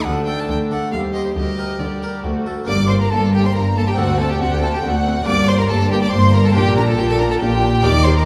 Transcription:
0.04 cello section D2, harpsichord D2, double bass section D2, viola section A3, violin section D4 A4, violin F#5
0.26 harpsichord A3 D4 A4, violin G5
0.40 violin A5
0.47 double bass section D2, cello section D3, harpsichord D3, violin section A#4, violin G5
0.71 harpsichord A3 D4 A4, violin F#5
0.90 harpsichord D#2, cello section D#2, double bass section D#2, viola section G3, violin section G4 C5, violin F5
1.13 harpsichord G4 C5, violin D#5
1.25 violin C5
1.34 double bass section D2, cello section D2, harpsichord D2, viola section G3, violin section G4 A#4, violin D#5
1.58 harpsichord G4 A#4
1.80 double bass section D2, harpsichord D3, cello section D3, viola section G3, violin section G4 A#4, violin D5
2.02 harpsichord G4 A#4
2.23 double bass section D2, harpsichord D2, cello section D2, viola section A3, violin section F#4 A4
2.46 harpsichord A3 F#4 A4
2.64 harpsichord A#3 D4 G4
2.68 double bass section G1, harpsichord G2, cello section G2, viola section A#3, violin D5, violin section D6
2.88 viola section A#3, violin C5, violin section C6
3.01 violin A#4, violin section A#5
3.10 double bass section G1, cello section G2, harpsichord G2, viola section A#3, violin A4, violin section A5
3.32 viola section A#3, violin G4, violin section G5
3.44 violin C5, violin section C6
3.53 double bass section G1, harpsichord G2, cello section G2, viola section A#3, violin A#4, violin section A#5
3.76 viola section A#3, violin A4, violin section A5
3.87 violin G4, violin section G5
3.94 harpsichord C4 D4 A4, violin F#4
3.98 harpsichord D2, double bass section D2, cello section D2, viola section C4, violin section F#5
4.18 viola section C4, violin A4, violin section A5
4.29 violin G4, violin section G5
4.41 cello section D2, double bass section D2, harpsichord D2, viola section C4, violin F#4, violin section F#5
4.52 violin G4, violin section G5
4.61 viola section C4, violin A4, violin section A5
4.73 violin G4, violin section G5
4.83 double bass section D2, cello section D2, harpsichord D2, viola section C4, violin F#4, violin section F#5
5.06 viola section C4
5.22 harpsichord A#3 D4 G4, violin D5, violin section D6
5.27 double bass section G1, harpsichord G2, cello section G2, viola section A#3, violin section D6
5.48 viola section A#3, violin C5, violin section C6
5.59 violin A#4, violin section A#5
5.69 double bass section G1, harpsichord G2, cello section G2, viola section A#3, violin A4, violin section A5
5.90 viola section A#3, violin G4, violin section G5
6.02 violin D5, violin section D6
6.12 double bass section G1, cello section G2, harpsichord G2, viola section A#3, violin C5, violin section C6
6.34 viola section A#3, violin A#4, violin section A#5
6.45 violin A4, violin section A5
6.51 harpsichord A#3 D4 G4, violin section G5
6.55 double bass section A#1, harpsichord A#2, cello section A#2, viola section D4, violin G4, violin section G5
6.76 viola section D4, violin A#4, violin section A#5
6.86 violin A4, violin section A5
6.91 violin section A5
6.97 double bass section A#1, cello section A#2, harpsichord A#2, viola section D4, violin G4, violin section G5
7.09 violin A4, violin section A5
7.18 viola section D4, violin A#4, violin section A#5
7.29 violin A4, violin section A5
7.40 double bass section A#1, cello section A#2, harpsichord A#2, viola section D4, violin G4, violin section G5
7.63 viola section D4
7.81 double bass section D#2, cello section D#3, harpsichord A#3 D#4 G4, viola section G4, violin D5, violin section D6
7.85 harpsichord D#3
8.04 viola section G4, violin C5, violin section C6
8.16 violin A#4, violin section A#5

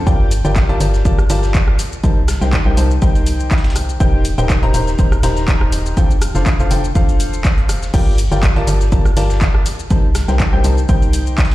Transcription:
0.07 fm bass G1, upright piano F4 G4 A#4 D5 G5, kick, closed hi-hat, shaker
0.31 closed hi-hat, open hi-hat, shaker
0.45 fm bass G1, upright piano F4 G4 A#4 D5 G5, shaker
0.56 kick, snare, clap, closed hi-hat, shaker
0.69 fm bass G1, upright piano F4 G4 A#4 D5 A5, closed hi-hat
0.80 fm bass G1, upright piano F4 G4 A#4 D5 A5, closed hi-hat, open hi-hat, shaker
0.94 snare, shaker
1.05 fm bass G1, upright piano F4 G4 A#4 D5 A5, kick, closed hi-hat, shaker
1.19 cross-stick, shaker
1.30 fm bass G1, upright piano F4 G4 A#4 D5 A5, open hi-hat, shaker
1.43 snare, shaker
1.54 kick, snare, clap, closed hi-hat, shaker
1.68 cross-stick
1.79 closed hi-hat, open hi-hat, shaker
1.92 shaker
2.03 fm bass C2, upright piano D#4 G4 A#4 C5 A5, kick, closed hi-hat, shaker
2.28 cross-stick, snare, closed hi-hat, open hi-hat, shaker
2.41 fm bass C2, upright piano D#4 G4 A#4 C5 G5, snare, shaker
2.53 kick, snare, clap, closed hi-hat, shaker
2.66 fm bass C2, upright piano D#4 G4 A#4 C5 G5
2.77 fm bass C2, upright piano D#4 G4 A#4 C5 A5, closed hi-hat, open hi-hat, shaker
2.91 shaker
3.02 fm bass C2, upright piano D#4 G4 A#4 C5 G5, kick, closed hi-hat, shaker
3.15 closed hi-hat, shaker
3.27 closed hi-hat, open hi-hat, shaker
3.40 shaker
3.51 kick, snare, clap, closed hi-hat, shaker
3.58 snare, closed hi-hat
3.64 snare, closed hi-hat
3.70 snare, closed hi-hat
3.76 cross-stick, closed hi-hat, open hi-hat, shaker
3.89 shaker
4.00 fm bass D#1, upright piano D#4 G4 A#4 C5 G5, kick, closed hi-hat, shaker
4.25 closed hi-hat, open hi-hat, shaker
4.38 fm bass D#1, upright piano D#4 G4 A#4 C5 G5, shaker
4.49 kick, snare, clap, closed hi-hat, shaker
4.63 fm bass D#1, upright piano D#4 G4 A#4 C5 A#5, closed hi-hat
4.74 fm bass D#1, upright piano D#4 G4 A#4 C5 A#5, closed hi-hat, open hi-hat, shaker
4.87 snare, shaker
4.99 fm bass D#1, upright piano D#4 G4 A#4 C5 A#5, kick, closed hi-hat, shaker
5.12 cross-stick, shaker
5.23 fm bass D#1, upright piano D#4 G4 A#4 C5 A#5, snare, closed hi-hat, open hi-hat, shaker
5.37 snare, shaker
5.48 kick, snare, clap, closed hi-hat, shaker
5.61 cross-stick
5.72 closed hi-hat, open hi-hat, shaker
5.86 shaker
5.97 fm bass F1, upright piano D4 F4 A4 C5 G5, kick, closed hi-hat, shaker
6.11 shaker
6.22 cross-stick, closed hi-hat, open hi-hat, shaker
6.35 fm bass F1, upright piano D4 F4 A4 C5 F5, snare, shaker
6.46 kick, snare, clap, closed hi-hat, shaker
6.59 fm bass F1, upright piano D4 F4 A4 C5 F5, shaker
6.71 fm bass F1, upright piano D4 F4 A4 C5 G5, closed hi-hat, open hi-hat, shaker
6.84 shaker
6.95 fm bass F1, upright piano D4 F4 A4 C5 F5, kick, closed hi-hat, shaker
7.09 closed hi-hat, shaker
7.20 closed hi-hat, open hi-hat, shaker
7.33 shaker
7.44 kick, snare, clap, closed hi-hat, shaker
7.58 closed hi-hat
7.69 cross-stick, closed hi-hat, open hi-hat, shaker
7.82 snare, shaker
7.94 fm bass G1, upright piano F4 G4 A#4 D5 G5, kick, closed hi-hat, crash, shaker
8.18 closed hi-hat, open hi-hat, shaker
8.32 fm bass G1, upright piano F4 G4 A#4 D5 G5, shaker
8.43 kick, snare, clap, closed hi-hat, shaker
8.56 fm bass G1, upright piano F4 G4 A#4 D5 A5, closed hi-hat
8.67 fm bass G1, upright piano F4 G4 A#4 D5 A5, closed hi-hat, open hi-hat, shaker
8.81 snare, shaker
8.92 fm bass G1, upright piano F4 G4 A#4 D5 A5, kick, closed hi-hat, shaker
9.05 cross-stick, shaker
9.17 fm bass G1, upright piano F4 G4 A#4 D5 A5, open hi-hat, shaker
9.30 snare, shaker
9.41 kick, snare, clap, closed hi-hat, shaker
9.55 cross-stick
9.66 closed hi-hat, open hi-hat, shaker
9.79 shaker
9.90 fm bass C2, upright piano D#4 G4 A#4 C5 A5, kick, closed hi-hat, shaker
10.15 cross-stick, snare, closed hi-hat, open hi-hat, shaker
10.28 fm bass C2, upright piano D#4 G4 A#4 C5 G5, snare, shaker
10.40 kick, snare, clap, closed hi-hat, shaker
10.53 fm bass C2, upright piano D#4 G4 A#4 C5 G5
10.64 fm bass C2, upright piano D#4 G4 A#4 C5 A5, closed hi-hat, open hi-hat, shaker
10.78 shaker
10.89 fm bass C2, upright piano D#4 G4 A#4 C5 G5, kick, closed hi-hat, shaker
11.02 closed hi-hat, shaker
11.13 closed hi-hat, open hi-hat, shaker
11.27 shaker
11.38 kick, snare, clap, closed hi-hat, shaker
11.45 snare, closed hi-hat
11.51 snare, closed hi-hat

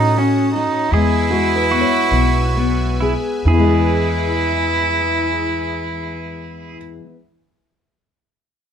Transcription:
Already playing: upright bass A2, steel-string acoustic guitar A3 C#4 F#4, cello D#4, pedal steel guitar A4, analog synth pad C#5 F#5 A5 D#6
0.18 cello C#4, steel-string acoustic guitar F#4
0.53 cello D#4, steel-string acoustic guitar F#4
0.90 upright bass E2, steel-string acoustic guitar E2 G#3 B3, cello E4, pedal steel guitar G#4, analog synth pad B4 E5 G#5 E6
1.30 steel-string acoustic guitar G#3, felt piano F#4
1.56 felt piano B4
1.71 steel-string acoustic guitar B3, pedal steel guitar F#4
1.80 felt piano C#5
2.11 upright bass B1, steel-string acoustic guitar E3 B3
2.57 steel-string acoustic guitar B3
3.00 pedal steel guitar E4, steel-string acoustic guitar G#4
3.45 upright bass E2, steel-string acoustic guitar E2, analog synth pad E3 E4 G#4 B4, felt piano E4, cello E4, pedal steel guitar G#4
3.54 steel-string acoustic guitar E3
3.59 steel-string acoustic guitar G#3
3.64 steel-string acoustic guitar B3
3.69 steel-string acoustic guitar G#4

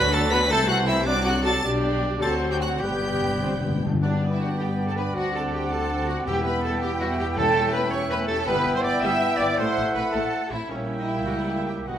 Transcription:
Already playing: double bass section D2, cello section D3, bassoon F#3, viola section D4 F#4, trumpet B4, oboe B4, violin section B5 B6
0.12 viola section B3 D4, clarinet A4, trumpet A4, violin section A5 A6, flute A5
0.30 french horn section B3 F#4, viola section D4 F#4, clarinet B4, trumpet B4, violin section B5 B6, flute B5
0.50 double bass section C2, cello section C3, bassoon E3, viola section A3 E4, clarinet A4, trumpet A4, oboe C5, violin section A5 A6, flute A5
0.68 viola section C4 A4, clarinet F#4, trumpet F#4, violin section F#5 F#6, flute F#5
0.86 viola section A3 E4, french horn section C4 E4, clarinet E4, trumpet E4, violin section E5 E6, flute E5
1.05 bassoon F#3, viola section C4 F#4, clarinet D4, trumpet D4, violin section D5 D6, oboe D5, flute D5
1.24 viola section D4 A4, clarinet F#4, trumpet F#4, violin section F#5 F#6, flute F#5
1.43 viola section C4 F#4, french horn section D4 F#4, clarinet A4, trumpet A4, violin section A5 A6, flute A5
1.64 double bass section B1, cello section B2, bassoon G3, french horn section D4 G4, viola section D4 G4, oboe D5
2.20 double bass section D2, cello section D3, bassoon F#3, french horn section C4 F#4, viola section C4 F#4, clarinet A4, trumpet A4, oboe C5, violin section A5 A6, flute A5
2.51 clarinet G4, trumpet G4, violin section G5 G6, flute G5
2.60 trumpet F#4, clarinet F#4, violin section F#5 F#6, flute F#5
2.80 double bass section G1, timpani G2, cello section G2, bassoon G3, french horn section B3 G4, viola section B3 G4, clarinet G4, trumpet G4, oboe B4, violin section G5 G6, flute G5
2.89 timpani G2
2.98 timpani G2
3.05 timpani G2
3.13 timpani G2
3.21 timpani G2
3.29 timpani G2
3.37 timpani G2
3.42 timpani G2, french horn section C4
3.54 timpani G2
3.61 timpani G2, french horn section B3
3.70 timpani G2
3.77 timpani G2
3.83 timpani G2, french horn section D4
3.94 timpani G2
4.01 double bass section G2, bassoon B3, french horn section B3 D4, clarinet D4, viola section D4 G4, cello section D4, violin section B4 D5, oboe D5, flute D5, trumpet G5
4.21 viola section B3 B4, violin section D5
4.31 clarinet E4, cello section E4, violin section E5
4.39 viola section D4 G4, clarinet F#4, cello section F#4, violin section B4 F#5
4.58 viola section B3 B4, clarinet G4, cello section G4, violin section D5 G5
4.79 viola section D4 G4, violin section B4
4.87 clarinet A4, cello section A4, violin section A5
4.96 viola section B3 B4, clarinet B4, cello section B4, violin section D5 B5
5.14 double bass section D2, bassoon C4, french horn section C4, viola section D4 F#4, clarinet F#4, cello section F#4, violin section C5 F#5, trumpet F#5, flute F#5
5.34 viola section C4 A4, clarinet A4, cello section A4, violin section D5 A5
5.53 viola section D4 F#4, clarinet G4, cello section G4, violin section C5 G5
5.71 viola section C4 A4, clarinet A4, cello section A4, violin section D5 A5
5.89 viola section D4 F#4, violin section C5
6.09 viola section C4 A4, cello section F#4, clarinet F#4, violin section D5 F#5
6.26 timpani E2, double bass section E2, viola section G3 E4, bassoon B3, french horn section B3 E4, cello section G4, clarinet G4, violin section E5 G5, oboe E5, trumpet G5, flute G5
6.45 viola section B3 G4, cello section B4, clarinet B4, violin section G5 B5
6.64 viola section G3 E4, cello section A4, clarinet A4, violin section E5 A5
6.82 viola section B3 G4, cello section G4, clarinet G4, violin section G5
7.01 viola section G3 E4, cello section F#4, clarinet F#4, violin section E5 F#5
7.18 viola section B3 G4, clarinet G4, cello section G4, violin section G5
7.36 timpani E2, viola section A3 E4, french horn section C#4, bassoon C#4, cello section A4, clarinet A4, violin section A5
7.56 viola section C#4 G4, violin section G5
7.73 viola section A3 E4, clarinet B4, cello section B4, violin section A5 B5
7.91 viola section C#4 G4, clarinet C#5, cello section C#5, violin section G5 C#6
8.09 viola section A3 E4, clarinet B4, cello section B4, violin section A5 B5
8.28 viola section C#4 G4, clarinet A4, cello section A4, violin section G5 A5
8.46 double bass section G1, viola section G3 B3, french horn section B3 E4, bassoon B3, violin section B4 B5, clarinet B4, cello section B4, oboe E5, flute G5, trumpet G5
8.65 double bass section G1, viola section B3 E4, violin section G5
8.74 clarinet C5, cello section C5, violin section C6
8.83 double bass section G1, viola section B3, clarinet D5, cello section D5, violin section E5 D6
9.01 double bass section G1, viola section G3 B3, violin section B4 E6, clarinet E5, cello section E5
9.38 double bass section G1, viola section B3, clarinet D5, cello section D5, violin section E5 D6
9.51 cello section D5
9.56 double bass section A1, french horn section A3, bassoon A3, viola section A3, clarinet C5, violin section C5 C6, cello section C5, trumpet F#5, flute F#5
9.76 double bass section A1, viola section A3 E4, violin section F#5
9.94 double bass section A1, viola section A3 C4, clarinet B4, cello section B4, violin section E5 B5
10.12 double bass section A1, viola section A3, clarinet A4, cello section A4, violin section C5 A5
10.51 double bass section A1, viola section A3 C4, cello section E4, clarinet E4, violin section E5
10.69 double bass section A#1, viola section G3 E4, french horn section A#3 E4, bassoon A#3, clarinet C#4, cello section C#4, violin section C#5 E5, oboe E5, flute G5, trumpet G5
10.98 clarinet D#4, cello section D#4, violin section D#5
11.07 clarinet E4, cello section E4, violin section E5
11.26 double bass section C#2, clarinet F#4, cello section F#4, violin section F#5
11.57 clarinet E4, cello section E4, violin section E5
11.67 cello section G4, clarinet G4, violin section G5
11.87 double bass section B1, timpani B2, viola section F#3 D#4, french horn section B3 D#4, bassoon B3, cello section F#4, clarinet F#4, oboe D#5, violin section F#5, trumpet F#5, flute F#5

